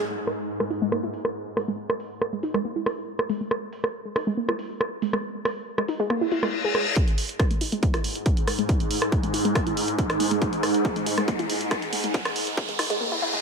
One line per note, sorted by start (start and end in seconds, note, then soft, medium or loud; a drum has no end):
0.00 0.10 G#2 medium
0.27 cross-stick medium
0.27 open hi-hat loud
0.60 0.64 G#3 medium
0.60 cross-stick medium
0.70 0.77 D#4 medium
0.70 open hi-hat loud
0.82 0.88 G#3 loud
0.92 0.98 A#3 medium
0.92 cross-stick medium
1.03 1.12 E4 medium
1.14 open hi-hat loud
1.25 cross-stick medium
1.57 1.66 G#3 medium
1.57 cross-stick medium
1.57 open hi-hat loud
1.68 1.72 G#3 medium
1.90 cross-stick medium
2.00 open hi-hat loud
2.22 cross-stick medium
2.33 2.36 G#3 medium
2.43 2.50 D#4 medium
2.43 open hi-hat loud
2.54 2.60 G#3 loud
2.54 cross-stick medium
2.65 2.71 A#3 medium
2.76 2.85 E4 medium
2.86 cross-stick medium
2.86 open hi-hat loud
3.19 cross-stick medium
3.29 3.39 G#3 medium
3.29 open hi-hat loud
3.41 3.44 G#3 medium
3.51 cross-stick medium
3.73 open hi-hat loud
3.84 cross-stick medium
4.05 4.09 G#3 medium
4.16 4.22 D#4 medium
4.16 cross-stick medium
4.16 open hi-hat loud
4.27 4.33 G#3 loud
4.37 4.44 A#3 medium
4.49 4.57 E4 medium
4.49 cross-stick medium
4.59 open hi-hat loud
4.81 cross-stick medium
5.02 5.12 G#3 medium
5.02 open hi-hat loud
5.13 5.17 G#3 medium
5.13 cross-stick medium
5.45 cross-stick medium
5.45 open hi-hat loud
5.78 5.82 G#3 medium
5.78 cross-stick medium
5.88 5.95 D#4 medium
5.88 open hi-hat loud
6.00 6.06 G#3 loud
6.10 6.16 A#3 medium
6.10 cross-stick medium
6.10 reverse cymbal medium
6.21 6.30 E4 medium
6.32 6.41 E4 medium
6.32 open hi-hat loud
6.43 6.46 G#3 medium
6.43 cross-stick medium
6.65 6.68 G#4 medium
6.75 6.84 G#3 medium
6.75 cross-stick medium
6.75 open hi-hat loud
6.96 13.01 G#2 medium
6.96 kick loud
6.96 closed hi-hat medium
6.96 riser medium
7.08 closed hi-hat medium
7.18 open hi-hat loud
7.29 closed hi-hat medium
7.39 kick loud
7.39 cross-stick medium
7.39 closed hi-hat medium
7.51 7.54 G#3 medium
7.51 closed hi-hat medium
7.61 7.68 D#4 medium
7.61 open hi-hat loud
7.72 7.78 G#3 loud
7.72 closed hi-hat medium
7.83 7.89 A#3 medium
7.83 kick loud
7.83 closed hi-hat medium
7.94 8.03 E4 medium
7.94 cross-stick medium
7.94 closed hi-hat medium
8.04 open hi-hat loud
8.15 closed hi-hat medium
8.26 kick loud
8.26 closed hi-hat medium
8.37 closed hi-hat medium
8.47 8.57 G#3 medium
8.47 cross-stick medium
8.47 open hi-hat loud
8.59 8.62 G#3 medium
8.59 closed hi-hat medium
8.69 kick loud
8.69 closed hi-hat medium
8.80 closed hi-hat medium
8.91 open hi-hat loud
9.02 cross-stick medium
9.02 closed hi-hat medium
9.12 kick loud
9.12 closed hi-hat medium
9.23 9.27 G#3 medium
9.23 closed hi-hat medium
9.34 9.40 D#4 medium
9.34 open hi-hat loud
9.45 9.51 G#3 loud
9.45 closed hi-hat medium
9.55 kick loud
9.55 cross-stick medium
9.55 closed hi-hat medium
9.67 9.75 E4 medium
9.67 closed hi-hat medium
9.77 open hi-hat loud
9.88 closed hi-hat medium
9.99 kick loud
9.99 closed hi-hat medium
10.10 cross-stick medium
10.10 closed hi-hat medium
10.20 10.30 G#3 medium
10.20 open hi-hat loud
10.31 10.35 G#3 medium
10.31 closed hi-hat medium
10.42 kick loud
10.42 closed hi-hat medium
10.53 closed hi-hat medium
10.63 cross-stick medium
10.63 open hi-hat loud
10.74 closed hi-hat medium
10.85 kick loud
10.85 closed hi-hat medium
10.96 11.00 G#3 medium
10.96 closed hi-hat medium
11.06 11.13 D#4 medium
11.06 open hi-hat loud
11.18 11.24 G#3 loud
11.18 cross-stick medium
11.18 closed hi-hat medium
11.28 11.34 A#3 medium
11.28 kick loud
11.28 closed hi-hat medium
11.39 11.48 E4 medium
11.39 closed hi-hat medium
11.50 open hi-hat loud
11.61 closed hi-hat medium
11.71 kick loud
11.71 cross-stick medium
11.71 closed hi-hat medium
11.82 closed hi-hat medium
11.93 12.02 G#3 medium
11.93 open hi-hat loud
12.04 12.07 G#3 medium
12.04 closed hi-hat medium
12.14 kick loud
12.14 closed hi-hat medium
12.25 cross-stick medium
12.25 closed hi-hat medium
12.36 open hi-hat loud
12.47 closed hi-hat medium
12.57 kick loud
12.57 closed hi-hat medium
12.69 12.72 G#3 medium
12.69 closed hi-hat medium
12.79 12.85 D#4 medium
12.79 cross-stick medium
12.79 open hi-hat loud
12.90 12.96 G#3 loud
12.90 closed hi-hat medium
13.01 13.07 A#3 medium
13.01 reverse cymbal medium
13.12 13.21 E4 medium
13.22 13.32 E4 medium
13.34 13.37 G#3 medium